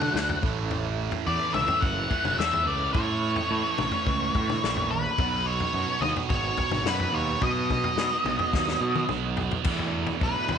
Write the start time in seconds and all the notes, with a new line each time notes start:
Already playing: D3 F#3 A3 D4 E4 F#5
0.01 mid tom
0.14 D2, snare
0.29 floor tom
0.41 A1 A2 E3 A3 C#4, kick
0.71 floor tom
1.12 floor tom
1.26 E2 A2 E3 A3 D5
1.54 C#2 E5, mid tom
1.68 floor tom
1.81 F#1 F#5, kick
2.10 A2 E3 A3, kick, floor tom
2.25 F#1, mid tom
2.38 E2 E5, snare
2.53 floor tom
2.65 C#2 A2 E3 A3 D5
2.93 A2 C#5, kick, floor tom
3.36 floor tom
3.49 A2 E3 A3
3.78 A1, mid tom
3.91 floor tom
4.07 C#2, kick
4.35 A2 E3 A3, kick, floor tom
4.49 mid tom
4.64 A#1, snare
4.76 floor tom
4.91 B4
5.18 B1 B2 F#3 B3 D#4, kick, floor tom
5.46 C#5
5.60 floor tom
5.74 F#2
6.01 D#2 B2 F#3 B3 D#5, mid tom
6.16 floor tom
6.30 G#1 C#5, kick
6.57 kick, floor tom
6.71 G#1, mid tom
6.84 F#2 B2 F#3 B3 B4, snare
7.00 floor tom
7.13 D#2 C#5
7.40 B2 F#3 B3 D#5, kick, floor tom
7.70 kick, mid tom
7.84 floor tom
7.97 B2, snare
8.24 B1 B2 F#3 B3, mid tom
8.39 floor tom
8.53 D#2, kick, snare
8.68 snare
8.81 B2
8.95 high tom
9.08 B1 B2 F#3 B3, mid tom
9.37 floor tom
9.51 floor tom
9.64 E2 B2 E3 A3 D4 E4, kick, floor tom, crash
9.79 floor tom
10.07 floor tom
10.21 B1 B4, kick
10.49 E2 C#5, floor tom, mid tom